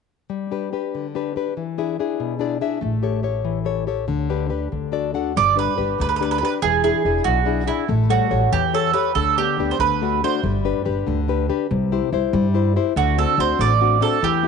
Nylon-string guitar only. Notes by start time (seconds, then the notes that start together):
0.30 G3
0.51 D4 G4 B4
0.72 D4 G4 B4
0.95 D3
1.15 D4 G4 B4
1.36 D4 G4 B4
1.57 E3
1.78 D4 E4 G#4
1.99 D4 E4 G#4
2.20 B2
2.39 D4 E4 G#4 D5
2.61 D4 E4 G#4 E5
2.81 A3
3.03 G4 A4 C#5
3.23 G4 A4 C#5
3.45 E3
3.65 G4 A4 C#5
3.87 G4 A4 C#5
4.08 D3
4.30 D4 G4 B4
4.50 D4 G4 B4
4.72 D3
4.92 D4 F#4 A4 D5
5.14 D4 F#4 A4 F#5
5.36 G3
5.56 D4 G4 B4
5.77 D4 G4 B4
5.99 D3
6.21 D4 G4 B4
6.42 D4 G4 B4
6.64 E3
6.84 D4 E4 G#4
7.05 D4 E4 G#4
7.26 B2
7.46 D4 E4 G#4
7.67 D4 E4 G#4
7.89 A3
8.09 G3 A4 C#5
8.30 G4 A4 C#5
8.52 E3
8.74 G4 A4 C#5
8.94 G4 A4 C#5
9.16 D3
9.38 B3 D4 G4
9.59 B3 D4 G4
9.80 D3
10.02 A3 D4 F#4
10.24 A3 D4 F#4
10.44 G3
10.65 D4 G4 B4
10.85 D4 G4 B4
11.07 D3
11.28 D4 G4 B4
11.49 D4 G4 B4
11.71 C3
11.92 E4 G4 C5
12.13 E4 G4 C5
12.33 G3
12.54 E4 G4 C5
12.76 E4 G4 C5
12.97 D3
13.18 C4 D4 F#4
13.38 C4 D4 F#4
13.60 A3
13.81 C4 D4 F#4
14.01 C4 D4 F#4
14.23 E3
14.43 B3 E4 G4